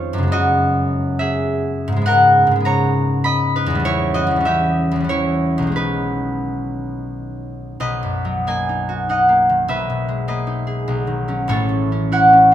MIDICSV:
0, 0, Header, 1, 2, 480
1, 0, Start_track
1, 0, Key_signature, 5, "major"
1, 0, Tempo, 580271
1, 275, Time_signature, 3, 2, 24, 8
1, 2198, Tempo, 598802
1, 3638, Tempo, 632911
1, 4118, Tempo, 674157
1, 6518, Tempo, 607287
1, 9748, End_track
2, 0, Start_track
2, 0, Title_t, "Harp"
2, 0, Program_c, 0, 46
2, 0, Note_on_c, 0, 41, 72
2, 0, Note_on_c, 0, 51, 57
2, 0, Note_on_c, 0, 56, 56
2, 0, Note_on_c, 0, 61, 52
2, 0, Note_on_c, 0, 63, 84
2, 0, Note_on_c, 0, 65, 62
2, 0, Note_on_c, 0, 68, 82
2, 0, Note_on_c, 0, 72, 97
2, 0, Note_on_c, 0, 73, 70
2, 0, Note_on_c, 0, 75, 98
2, 0, Note_on_c, 0, 77, 104
2, 109, Note_on_c, 0, 42, 79
2, 129, Note_off_c, 0, 72, 0
2, 150, Note_on_c, 0, 49, 61
2, 179, Note_off_c, 0, 56, 0
2, 189, Note_on_c, 0, 56, 59
2, 217, Note_off_c, 0, 41, 0
2, 227, Note_on_c, 0, 59, 58
2, 235, Note_off_c, 0, 51, 0
2, 254, Note_off_c, 0, 75, 0
2, 264, Note_on_c, 0, 75, 127
2, 272, Note_on_c, 0, 66, 97
2, 294, Note_off_c, 0, 77, 0
2, 297, Note_off_c, 0, 63, 0
2, 297, Note_off_c, 0, 65, 0
2, 986, Note_on_c, 0, 76, 100
2, 989, Note_off_c, 0, 68, 0
2, 998, Note_on_c, 0, 68, 78
2, 1497, Note_off_c, 0, 75, 0
2, 1552, Note_on_c, 0, 44, 82
2, 1581, Note_off_c, 0, 49, 0
2, 1591, Note_on_c, 0, 49, 68
2, 1615, Note_off_c, 0, 56, 0
2, 1624, Note_on_c, 0, 56, 68
2, 1653, Note_off_c, 0, 42, 0
2, 1657, Note_off_c, 0, 59, 0
2, 1667, Note_on_c, 0, 59, 62
2, 1702, Note_on_c, 0, 78, 127
2, 1715, Note_on_c, 0, 70, 97
2, 1733, Note_off_c, 0, 76, 0
2, 1988, Note_off_c, 0, 61, 0
2, 2031, Note_off_c, 0, 44, 0
2, 2041, Note_on_c, 0, 44, 70
2, 2068, Note_off_c, 0, 49, 0
2, 2078, Note_on_c, 0, 49, 56
2, 2104, Note_off_c, 0, 56, 0
2, 2114, Note_on_c, 0, 56, 56
2, 2143, Note_off_c, 0, 59, 0
2, 2153, Note_on_c, 0, 59, 60
2, 2191, Note_off_c, 0, 73, 0
2, 2192, Note_on_c, 0, 82, 124
2, 2201, Note_on_c, 0, 73, 85
2, 2666, Note_on_c, 0, 83, 120
2, 2678, Note_on_c, 0, 75, 90
2, 2920, Note_on_c, 0, 71, 93
2, 2927, Note_on_c, 0, 63, 77
2, 3004, Note_on_c, 0, 40, 80
2, 3036, Note_on_c, 0, 52, 68
2, 3075, Note_on_c, 0, 55, 69
2, 3095, Note_off_c, 0, 44, 0
2, 3111, Note_on_c, 0, 61, 66
2, 3113, Note_off_c, 0, 49, 0
2, 3131, Note_off_c, 0, 56, 0
2, 3144, Note_off_c, 0, 73, 0
2, 3154, Note_on_c, 0, 73, 123
2, 3158, Note_on_c, 0, 64, 93
2, 3164, Note_off_c, 0, 78, 0
2, 3169, Note_off_c, 0, 82, 0
2, 3170, Note_off_c, 0, 66, 0
2, 3170, Note_off_c, 0, 70, 0
2, 3173, Note_off_c, 0, 75, 0
2, 3174, Note_off_c, 0, 68, 0
2, 3178, Note_off_c, 0, 63, 0
2, 3389, Note_on_c, 0, 75, 113
2, 3398, Note_on_c, 0, 66, 91
2, 3479, Note_off_c, 0, 40, 0
2, 3489, Note_on_c, 0, 40, 65
2, 3515, Note_off_c, 0, 52, 0
2, 3524, Note_on_c, 0, 52, 57
2, 3555, Note_off_c, 0, 55, 0
2, 3565, Note_on_c, 0, 55, 58
2, 3589, Note_off_c, 0, 61, 0
2, 3599, Note_on_c, 0, 61, 63
2, 3637, Note_on_c, 0, 76, 108
2, 3646, Note_on_c, 0, 67, 90
2, 3802, Note_off_c, 0, 75, 0
2, 3978, Note_off_c, 0, 40, 0
2, 3987, Note_on_c, 0, 40, 68
2, 4010, Note_off_c, 0, 52, 0
2, 4020, Note_on_c, 0, 52, 61
2, 4046, Note_off_c, 0, 55, 0
2, 4055, Note_on_c, 0, 55, 55
2, 4076, Note_off_c, 0, 61, 0
2, 4085, Note_on_c, 0, 61, 61
2, 4113, Note_off_c, 0, 73, 0
2, 4121, Note_off_c, 0, 64, 0
2, 4122, Note_on_c, 0, 73, 104
2, 4130, Note_on_c, 0, 64, 85
2, 4467, Note_on_c, 0, 35, 72
2, 4501, Note_on_c, 0, 51, 56
2, 4533, Note_on_c, 0, 56, 60
2, 4554, Note_off_c, 0, 40, 0
2, 4559, Note_off_c, 0, 61, 0
2, 4568, Note_on_c, 0, 61, 56
2, 4569, Note_off_c, 0, 52, 0
2, 4585, Note_off_c, 0, 55, 0
2, 4587, Note_off_c, 0, 71, 0
2, 4596, Note_on_c, 0, 71, 96
2, 4606, Note_on_c, 0, 63, 69
2, 4614, Note_off_c, 0, 76, 0
2, 4619, Note_off_c, 0, 67, 0
2, 4621, Note_off_c, 0, 64, 0
2, 5126, Note_off_c, 0, 59, 0
2, 5581, Note_off_c, 0, 83, 0
2, 6003, Note_off_c, 0, 35, 0
2, 6019, Note_off_c, 0, 51, 0
2, 6035, Note_off_c, 0, 56, 0
2, 6050, Note_on_c, 0, 35, 77
2, 6053, Note_off_c, 0, 61, 0
2, 6054, Note_on_c, 0, 75, 107
2, 6055, Note_off_c, 0, 71, 0
2, 6063, Note_on_c, 0, 71, 71
2, 6068, Note_off_c, 0, 73, 0
2, 6212, Note_on_c, 0, 42, 54
2, 6231, Note_off_c, 0, 66, 0
2, 6369, Note_on_c, 0, 54, 62
2, 6528, Note_on_c, 0, 58, 61
2, 6529, Note_off_c, 0, 75, 0
2, 6532, Note_on_c, 0, 80, 97
2, 6538, Note_on_c, 0, 75, 78
2, 6693, Note_off_c, 0, 63, 0
2, 6703, Note_on_c, 0, 63, 55
2, 6858, Note_on_c, 0, 66, 62
2, 7011, Note_off_c, 0, 63, 0
2, 7019, Note_on_c, 0, 63, 60
2, 7022, Note_off_c, 0, 75, 0
2, 7024, Note_on_c, 0, 78, 79
2, 7032, Note_on_c, 0, 75, 59
2, 7164, Note_off_c, 0, 58, 0
2, 7174, Note_on_c, 0, 58, 61
2, 7337, Note_on_c, 0, 51, 52
2, 7349, Note_off_c, 0, 80, 0
2, 7481, Note_off_c, 0, 35, 0
2, 7487, Note_on_c, 0, 35, 73
2, 7492, Note_off_c, 0, 71, 0
2, 7493, Note_on_c, 0, 76, 100
2, 7501, Note_on_c, 0, 71, 76
2, 7506, Note_off_c, 0, 54, 0
2, 7508, Note_off_c, 0, 42, 0
2, 7509, Note_off_c, 0, 51, 0
2, 7510, Note_off_c, 0, 66, 0
2, 7512, Note_off_c, 0, 78, 0
2, 7655, Note_on_c, 0, 47, 50
2, 7805, Note_on_c, 0, 56, 57
2, 7947, Note_off_c, 0, 58, 0
2, 7951, Note_off_c, 0, 75, 0
2, 7954, Note_off_c, 0, 71, 0
2, 7957, Note_on_c, 0, 58, 60
2, 7960, Note_on_c, 0, 75, 85
2, 7964, Note_on_c, 0, 71, 61
2, 8098, Note_off_c, 0, 63, 0
2, 8108, Note_on_c, 0, 63, 59
2, 8265, Note_on_c, 0, 68, 61
2, 8421, Note_off_c, 0, 35, 0
2, 8430, Note_on_c, 0, 35, 71
2, 8445, Note_off_c, 0, 68, 0
2, 8446, Note_off_c, 0, 76, 0
2, 8449, Note_off_c, 0, 56, 0
2, 8451, Note_off_c, 0, 47, 0
2, 8584, Note_on_c, 0, 51, 58
2, 8675, Note_off_c, 0, 71, 0
2, 8749, Note_on_c, 0, 54, 50
2, 8753, Note_on_c, 0, 61, 59
2, 8905, Note_on_c, 0, 33, 72
2, 8913, Note_on_c, 0, 45, 76
2, 8917, Note_on_c, 0, 73, 106
2, 8923, Note_on_c, 0, 69, 73
2, 8929, Note_off_c, 0, 51, 0
2, 8930, Note_off_c, 0, 54, 0
2, 8931, Note_off_c, 0, 63, 0
2, 8933, Note_off_c, 0, 35, 0
2, 8934, Note_off_c, 0, 58, 0
2, 8936, Note_off_c, 0, 75, 0
2, 9071, Note_on_c, 0, 52, 52
2, 9245, Note_off_c, 0, 61, 0
2, 9255, Note_on_c, 0, 61, 59
2, 9411, Note_on_c, 0, 64, 63
2, 9415, Note_off_c, 0, 73, 0
2, 9417, Note_on_c, 0, 78, 108
2, 9424, Note_on_c, 0, 73, 83
2, 9570, Note_off_c, 0, 61, 0
2, 9580, Note_on_c, 0, 61, 57
2, 9748, Note_off_c, 0, 33, 0
2, 9748, Note_off_c, 0, 45, 0
2, 9748, Note_off_c, 0, 52, 0
2, 9748, Note_off_c, 0, 61, 0
2, 9748, Note_off_c, 0, 64, 0
2, 9748, Note_off_c, 0, 69, 0
2, 9748, Note_off_c, 0, 73, 0
2, 9748, Note_off_c, 0, 78, 0
2, 9748, End_track
0, 0, End_of_file